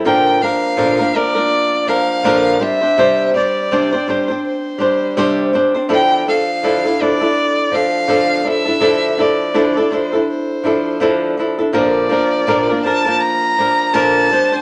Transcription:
X:1
M:4/4
L:1/16
Q:"Swing 16ths" 1/4=82
K:Bblyd
V:1 name="Violin"
g2 f4 d4 f4 e2- | e2 d4 c2 c6 z2 | g2 f4 d4 f4 e2- | e2 d4 c2 c6 z2 |
d6 a2 b4 a4 |]
V:2 name="Nylon-string guitar"
[B,,D,F,B,DB]2 [F,B,DB]2 [B,,D,F,B,DB] [F,B,DB] [F,B,DB] [F,B,DB]3 [F,B,DB]2 [B,,D,F,B,DB]2 [G,CDc] [CDc] | [C,G,CDc]2 [G,CDc]2 [C,G,CDc] [CDc] [G,CDc] [CDc]3 [G,CDc]2 [C,G,CDc]2 [G,CDc] [CDc] | [D,F,DEA]2 [F,DA]2 [D,F,DEA] [DEA] [F,DEA] [DEA]3 [F,DA]2 [D,F,DA]2 [F,DEA] [DEA] | [D,F,DEA]2 [F,DEA]2 [D,F,DEA] [DEA] [F,DEA] [DEA]3 [F,DEA]2 [D,F,DEA]2 [F,DEA] [DEA] |
[B,,D,F,B,DB]2 [F,B,DB]2 [B,,D,F,B,DB] [F,B,DB] [F,B,DB] [F,B,DB]3 [F,B,DB]2 [B,,D,F,B,DB]2 [G,CDc] [CDc] |]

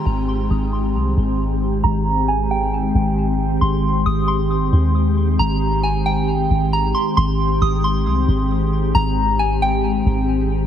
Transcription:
X:1
M:4/4
L:1/8
Q:1/4=135
K:Ab
V:1 name="Synth bell"
c'2 e' c'3 z2 | b2 a g3 z2 | c'2 e' c'3 z2 | b2 a g3 b c' |
c'2 e' c'3 z2 | b2 a g3 z2 |]
V:2 name="Ambient pad"
[E,A,CG]8- | [E,A,CG]8- | [E,A,CG]8- | [E,A,CG]8 |
[E,A,CG]8- | [E,A,CG]8 |]
V:3 name="808-style bass" clef=bass
A,,,2 A,,,2 C,, A,,,3 | A,,,4- A,,, A,,,3 | A,,,2 A,,,3 E,,3 | A,,,4- A,,, A,,,2 z |
A,,,2 A,,,2 C,, A,,,3 | A,,,4- A,,, A,,,3 |]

